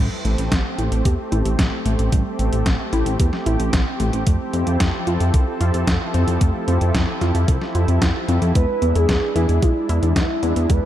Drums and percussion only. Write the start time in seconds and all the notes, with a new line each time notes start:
0.25 closed hi-hat
0.38 closed hi-hat
0.52 kick, snare, closed hi-hat
0.79 closed hi-hat
0.92 closed hi-hat
1.05 kick, closed hi-hat
1.32 closed hi-hat
1.45 closed hi-hat
1.59 kick, snare, closed hi-hat
1.86 closed hi-hat
1.99 closed hi-hat
2.12 kick, closed hi-hat
2.39 closed hi-hat
2.53 closed hi-hat
2.66 kick, snare, closed hi-hat
2.93 closed hi-hat
3.06 closed hi-hat
3.20 kick, closed hi-hat
3.33 snare
3.46 closed hi-hat
3.60 closed hi-hat
3.73 kick, snare, closed hi-hat
4.00 closed hi-hat
4.13 closed hi-hat
4.27 kick, closed hi-hat
4.53 closed hi-hat
4.67 closed hi-hat
4.80 kick, snare, closed hi-hat
5.07 closed hi-hat
5.20 closed hi-hat
5.34 kick, closed hi-hat
5.61 closed hi-hat
5.74 closed hi-hat
5.87 kick, snare, closed hi-hat
6.14 closed hi-hat
6.28 closed hi-hat
6.41 kick, closed hi-hat
6.68 closed hi-hat
6.81 closed hi-hat
6.95 kick, snare, closed hi-hat
7.21 snare, closed hi-hat
7.35 closed hi-hat
7.48 kick, closed hi-hat
7.62 snare
7.75 closed hi-hat
7.88 closed hi-hat
8.02 kick, snare, closed hi-hat
8.28 closed hi-hat
8.42 closed hi-hat
8.55 kick, closed hi-hat
8.82 closed hi-hat
8.95 closed hi-hat
9.09 kick, snare, closed hi-hat
9.36 closed hi-hat
9.49 closed hi-hat
9.62 kick, closed hi-hat
9.89 closed hi-hat
10.03 closed hi-hat
10.16 kick, snare, closed hi-hat
10.43 closed hi-hat
10.56 closed hi-hat
10.70 kick, closed hi-hat